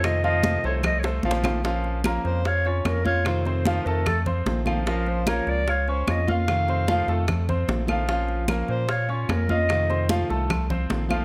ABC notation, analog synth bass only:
X:1
M:4/4
L:1/8
Q:1/4=149
K:Bbm
V:1 name="Analog synth bass" clef=bass
F,,3 C,,3 B,,,2- | B,,,3 F,,3 F,,2- | F,,3 F,,3 B,,,2- | B,,,3 D,,3 F,,2- |
F,,3 F,,3 B,,,2- | B,,,3 B,,3 F,,2- | F,,3 C,,3 B,,,2 |]